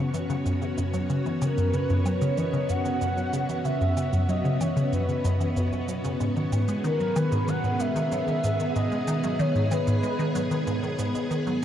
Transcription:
0.00 11.64 B3 medium
0.00 8.39 C#4 medium
0.00 7.85 F#4 medium
0.00 7.78 C#5 medium
0.14 0.29 E3 medium
0.14 shaker medium
0.30 0.45 C#3 loud
0.30 shaker soft
0.46 0.57 F#2 medium
0.46 shaker soft
0.62 0.69 C#3 medium
0.62 shaker soft
0.78 0.89 F#2 medium
0.78 shaker medium
0.94 1.09 F#3 medium
0.94 shaker medium
1.10 1.17 C#3 loud
1.10 shaker soft
1.26 1.41 E3 medium
1.26 shaker soft
1.42 1.57 C#3 medium
1.42 1.75 A#4 medium
1.42 low woodblock medium
1.42 shaker medium
1.58 1.69 F#2 medium
1.58 shaker soft
1.74 1.81 C#3 medium
1.74 2.07 B4 medium
1.74 shaker soft
1.90 2.01 F#2 medium
1.90 shaker soft
2.06 2.21 F#3 medium
2.06 2.39 C#5 medium
2.06 low woodblock medium
2.06 shaker medium
2.22 2.29 C#3 loud
2.22 shaker medium
2.37 2.53 E3 medium
2.37 2.71 D#5 loud
2.37 shaker medium
2.53 2.69 C#3 medium
2.53 shaker soft
2.69 2.81 F#2 medium
2.69 3.65 F#5 loud
2.69 shaker medium
2.85 2.92 C#3 medium
2.85 shaker medium
3.01 3.13 F#2 medium
3.01 shaker medium
3.17 3.32 F#3 medium
3.17 shaker soft
3.33 3.40 C#3 loud
3.33 shaker medium
3.49 3.64 E3 medium
3.49 shaker medium
3.65 3.80 C#3 loud
3.65 4.31 E5 loud
3.65 shaker soft
3.81 3.93 F#2 medium
3.81 shaker soft
3.97 4.04 C#3 medium
3.97 low woodblock soft
3.97 shaker medium
4.13 4.25 F#2 medium
4.13 shaker medium
4.29 4.44 F#3 medium
4.29 4.62 D#5 loud
4.29 shaker soft
4.45 4.52 C#3 loud
4.45 shaker soft
4.61 4.76 E3 medium
4.61 4.94 C#5 medium
4.61 low woodblock medium
4.61 shaker medium
4.77 4.92 C#3 loud
4.77 shaker soft
4.92 5.04 F#2 medium
4.92 5.89 B4 medium
4.92 shaker medium
5.08 5.16 C#3 medium
5.08 shaker soft
5.25 5.40 F#2 loud
5.25 shaker medium
5.41 5.56 E3 medium
5.41 shaker soft
5.57 5.68 F#2 medium
5.57 shaker soft
5.73 5.84 F#2 medium
5.73 shaker soft
5.88 6.00 F#3 medium
5.88 shaker medium
6.04 6.16 C#3 loud
6.04 shaker medium
6.20 6.32 G#2 medium
6.20 shaker soft
6.36 6.43 D#3 medium
6.36 shaker soft
6.52 6.64 G#2 medium
6.52 low woodblock soft
6.52 shaker medium
6.63 11.64 G#4 medium
6.68 6.83 G#3 medium
6.68 shaker soft
6.84 6.91 D#3 loud
6.84 7.18 A#4 medium
6.84 shaker soft
7.00 7.15 F#3 medium
7.00 shaker soft
7.16 7.31 D#3 loud
7.16 7.50 B4 medium
7.16 low woodblock medium
7.16 shaker medium
7.32 7.44 G#2 medium
7.32 shaker soft
7.48 7.55 D#3 medium
7.48 7.82 F#5 loud
7.48 shaker soft
7.64 7.76 G#2 medium
7.64 shaker soft
7.80 7.95 G#3 medium
7.80 8.77 E5 loud
7.80 shaker medium
7.96 8.03 D#3 loud
7.96 shaker soft
8.12 8.27 F#3 medium
8.12 shaker soft
8.28 8.43 D#3 loud
8.28 shaker soft
8.44 8.56 G#2 medium
8.44 shaker medium
8.60 8.67 D#3 medium
8.60 shaker soft
8.76 8.87 G#2 medium
8.76 9.41 D#5 loud
8.76 shaker soft
8.92 9.07 G#3 medium
8.92 shaker soft
9.08 9.15 D#3 loud
9.08 low woodblock soft
9.08 shaker medium
9.24 9.39 F#3 medium
9.24 shaker soft
9.39 9.55 D#3 loud
9.39 9.73 C#5 medium
9.39 shaker soft
9.55 9.67 G#2 medium
9.55 shaker soft
9.71 9.79 D#3 medium
9.71 10.99 B4 medium
9.71 low woodblock medium
9.71 shaker medium
9.87 9.99 G#2 medium
9.87 shaker soft
10.03 10.19 G#3 medium
10.03 shaker soft
10.19 10.26 D#3 loud
10.19 shaker soft
10.35 10.50 F#3 medium
10.35 shaker medium
10.51 10.66 D#3 loud
10.51 shaker soft
10.67 10.79 G#2 medium
10.67 shaker soft
10.83 10.90 D#3 medium
10.83 shaker soft
10.99 11.11 G#2 medium
10.99 shaker medium
11.15 11.30 G#3 medium
11.15 shaker soft
11.31 11.38 D#3 loud
11.31 shaker soft
11.47 11.62 F#3 medium
11.47 shaker soft

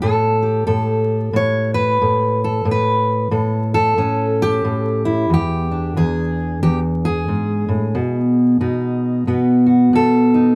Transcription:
0.02 0.67 A2 medium
0.02 0.66 A4 medium
0.42 2.64 G4 soft
0.67 1.33 A2 medium
0.67 1.34 A4 medium
1.33 2.00 A2 medium
1.33 1.74 C#5 loud
1.74 2.41 B4 loud
2.02 2.64 A2 medium
2.44 2.69 A4 medium
2.65 3.30 A2 medium
2.71 3.31 B4 medium
3.31 3.96 A2 medium
3.31 3.73 A4 soft
3.74 5.05 A4 loud
3.98 4.63 A2 medium
3.98 5.28 C#4 soft
4.42 5.32 G4 loud
4.64 5.28 A2 medium
5.05 5.32 E4 medium
5.30 5.95 E2 medium
5.30 5.97 G4 loud
5.71 7.92 D4 soft
5.97 6.61 E2 medium
5.97 6.62 G#4 loud
6.63 7.28 E2 medium
6.63 6.79 G4 loud
7.05 9.66 G#4 medium
7.28 7.68 G#2 medium
7.68 7.95 A2 medium
7.95 8.60 B2 medium
8.61 9.27 B2 medium
8.61 10.33 D#4 soft
9.27 9.92 B2 medium
9.27 10.55 B3 soft
9.66 9.93 F#4 soft
9.93 10.55 B2 medium
9.93 10.55 A4 medium
10.34 10.55 D#4 soft

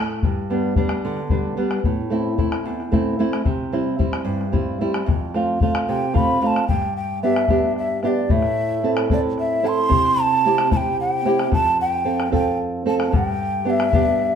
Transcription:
0.00 0.18 A2 medium
0.00 0.22 A3 medium
0.23 0.75 G2 soft
0.23 bombo low medium
0.50 0.75 G3 soft
0.50 0.76 B3 soft
0.50 0.76 D4 soft
0.76 1.20 G3 soft
0.76 1.20 B3 soft
0.76 1.20 D4 soft
0.76 bombo low medium
0.89 bombo rim medium
1.05 1.56 D3 medium
1.17 bombo rim soft
1.30 1.56 G3 soft
1.30 1.56 B3 soft
1.30 1.57 D4 soft
1.30 bombo low medium
1.57 1.79 G3 soft
1.57 1.79 B3 soft
1.57 1.79 D4 soft
1.71 bombo rim soft
1.84 2.37 A2 medium
1.84 bombo low medium
2.10 2.37 A3 soft
2.10 2.37 C4 soft
2.10 2.37 E4 soft
2.38 2.81 A3 soft
2.38 2.81 C4 soft
2.38 2.82 E4 soft
2.38 bombo low medium
2.52 bombo rim soft
2.66 3.18 E2 medium
2.80 bombo rim soft
2.92 3.18 A3 soft
2.92 3.19 C4 soft
2.92 3.19 E4 soft
2.92 bombo low medium
3.19 3.41 A3 soft
3.19 3.41 C4 soft
3.19 3.41 E4 soft
3.33 bombo rim soft
3.45 3.98 C3 soft
3.45 bombo low medium
3.72 3.97 G3 soft
3.72 3.98 C4 soft
3.72 3.98 E4 soft
3.99 4.42 G3 soft
3.99 4.43 C4 soft
3.99 4.43 E4 soft
3.99 bombo low medium
4.13 bombo rim soft
4.25 4.78 G2 medium
4.41 bombo rim soft
4.52 4.80 G3 soft
4.52 4.80 C4 soft
4.52 4.80 E4 soft
4.52 bombo low medium
4.81 5.02 G3 soft
4.81 5.03 C4 soft
4.81 5.03 E4 soft
4.94 bombo rim soft
5.06 5.59 F2 medium
5.06 bombo rim soft
5.06 bombo low medium
5.34 5.61 A3 soft
5.34 5.61 C4 soft
5.34 5.61 F4 medium
5.34 bombo rim soft
5.61 6.05 A3 soft
5.61 6.05 C4 soft
5.61 6.05 F4 soft
5.61 bombo low medium
5.75 bombo rim medium
5.89 6.41 C3 medium
5.89 6.14 G5 medium
6.14 6.40 A3 soft
6.14 6.41 C4 soft
6.14 6.41 F4 soft
6.14 6.42 B5 medium
6.14 bombo rim soft
6.14 bombo low medium
6.41 6.63 A3 soft
6.41 6.64 C4 soft
6.41 6.64 F4 soft
6.41 6.47 B5 medium
6.41 bombo rim soft
6.46 6.67 A5 medium
6.56 bombo rim soft
6.68 8.27 G2 soft
6.68 6.94 G5 medium
6.68 bombo low medium
6.82 bombo rim soft
6.97 7.21 G5 medium
7.23 7.49 B3 soft
7.23 7.49 D4 soft
7.23 7.49 G4 soft
7.23 7.73 E5 medium
7.36 bombo rim soft
7.48 8.02 B3 soft
7.48 8.02 D4 soft
7.48 8.02 G4 soft
7.48 bombo rim soft
7.48 bombo low medium
7.76 8.02 E5 medium
7.76 bombo rim soft
8.03 8.29 B3 soft
8.03 8.30 D4 soft
8.03 8.30 G4 soft
8.03 8.08 E5 medium
8.03 bombo rim soft
8.07 8.33 D5 medium
8.29 9.87 A2 soft
8.29 8.91 E5 medium
8.29 bombo low medium
8.42 bombo rim soft
8.83 9.10 C4 soft
8.83 9.09 E4 soft
8.83 9.10 A4 soft
8.97 bombo rim soft
9.10 9.62 C4 soft
9.10 9.63 E4 soft
9.10 9.63 A4 medium
9.10 9.19 D5 medium
9.10 bombo rim soft
9.10 bombo low medium
9.38 9.69 E5 medium
9.38 bombo rim soft
9.63 9.90 C4 soft
9.63 9.90 E4 soft
9.63 9.90 A4 soft
9.63 bombo rim soft
9.67 10.23 C6 loud
9.89 11.47 C3 medium
9.89 bombo low medium
10.05 bombo rim soft
10.21 10.72 A5 loud
10.46 10.70 C4 soft
10.46 10.70 E4 soft
10.46 10.71 G4 soft
10.58 bombo rim medium
10.71 11.23 C4 soft
10.71 11.24 E4 soft
10.71 11.24 G4 soft
10.71 10.78 A5 medium
10.71 bombo rim soft
10.71 bombo low medium
10.77 10.97 G5 medium
11.00 11.49 G5 medium
11.25 11.51 C4 soft
11.25 11.52 E4 soft
11.25 11.52 G4 medium
11.25 bombo rim soft
11.39 bombo rim soft
11.52 13.08 F2 medium
11.52 11.78 A5 medium
11.52 bombo rim soft
11.52 bombo low medium
11.67 bombo rim soft
11.81 12.30 G5 medium
12.05 12.30 C4 soft
12.05 12.31 F4 soft
12.05 12.31 A4 soft
12.20 bombo rim soft
12.32 12.84 C4 soft
12.32 12.84 F4 soft
12.32 12.84 A4 soft
12.32 12.58 G5 medium
12.32 bombo rim soft
12.32 bombo low soft
12.86 13.12 C4 soft
12.86 13.12 F4 soft
12.86 13.12 A4 soft
12.86 12.95 A5 medium
13.00 bombo rim soft
13.07 13.18 A5 soft
13.12 14.35 G2 medium
13.12 13.71 G5 medium
13.12 bombo low medium
13.28 bombo rim soft
13.65 13.92 B3 soft
13.65 13.92 D4 soft
13.65 13.93 G4 soft
13.70 14.35 E5 medium
13.80 bombo rim medium
13.93 14.35 B3 soft
13.93 14.35 D4 soft
13.93 14.35 G4 soft
13.93 bombo rim soft
13.93 bombo low medium
14.20 bombo rim soft

